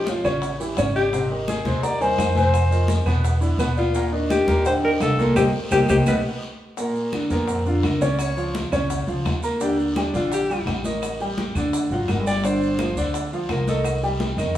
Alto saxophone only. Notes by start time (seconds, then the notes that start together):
Already playing: G4
0.09 F4
0.96 G4
1.49 G#4
1.84 D5
2.02 C5
2.38 C5
3.78 F4
4.31 G4
4.66 C5
4.84 A#4
5.02 A4
5.36 G4
5.72 G4
5.89 G4
6.08 B4
7.31 B3
7.50 C4
7.68 F4
7.85 A#4
8.03 D5
8.22 C#5
9.62 G4
9.79 A#3
9.98 D4
10.15 F4
10.33 G4
11.93 F4
12.10 A#4
12.27 D5
12.45 C5
13.51 A#4
13.69 A4